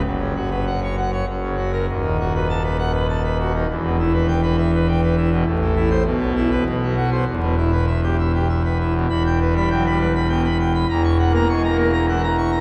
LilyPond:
<<
  \new Staff \with { instrumentName = "Pipe organ" } { \time 3/4 \key fis \phrygian \tempo 4 = 100 << { r4 fis''16 r4. ais'16 | \key e \minor r4 a''16 r4. r16 | r4 g''16 r4. r16 | r8. c''16 r8. b'16 r8. c''16 |
r4 e''16 r4. r16 | b''16 g''16 b'16 b''16 g''16 b''16 b'16 b''16 g''16 b''16 g''16 b''16 | ais''16 cis'''16 fis''16 ais''16 cis'''16 ais''16 ais'16 ais''16 fis''16 ais''16 cis'''16 ais''16 | } \\ { fis,16 cis16 fis'16 b'16 r16 cis''16 fis''16 cis''16 fis,16 cis16 fis'16 r16 | dis,16 dis16 fis'16 b'16 r16 b'16 fis''16 b'16 a''16 b'16 fis'16 dis16 | e,16 b,16 e'16 b'16 r16 b'16 e''16 b'16 g''16 b'16 e'16 b,16 | a,16 e16 e'16 r16 b,16 b16 e'16 r16 b,16 fis16 fis'16 r16 |
e,16 b,16 e'16 b'16 r16 g'16 e''16 g'16 e''16 b'16 e'16 b,16 | \tuplet 3/2 { e,4 g8 fis8 g8 r8 } b,16 r8. | \tuplet 3/2 { e,4 ais8 gis8 ais8 r8 } e16 r8. | } >> }
  \new Staff \with { instrumentName = "Pipe organ" } { \clef bass \time 3/4 \key fis \phrygian fis,,2 fis,,4 | \key e \minor dis,,2. | e,,2. | a,,4 b,,4 b,,4 |
e,,2. | e,,2. | e,,2. | }
>>